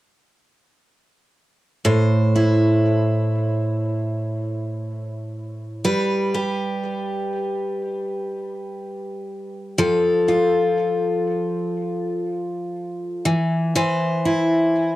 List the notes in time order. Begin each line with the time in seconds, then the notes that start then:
1.85 A2 C5
2.36 E4
5.85 G3 B4
6.34 G4
9.78 F3 A4
10.28 F4
13.25 E3
13.75 E3 C5
14.25 E4